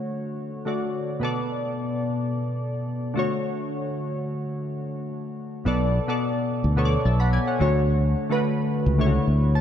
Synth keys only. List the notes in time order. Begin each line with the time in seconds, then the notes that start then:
Already playing: D3 A3 F#4 C#5
0.65 D3 A3 F#4 D5
1.20 B2 B3 A4
1.25 D5
3.14 D3 A3 F#4
3.19 C#5
5.65 B2 B3 A4 D5
6.07 B2 B3 A4 D5
6.76 B2 B3 A4 C#5
6.85 D5
7.05 E5 A5
7.20 F#5 B5
7.33 D5 G#5
7.47 C#5 F#5
7.59 D3 A3 F#4 C#5
8.30 D3 A3 F#4 B4
8.98 D3 A3 E4 C#5
9.07 F#4
9.55 A5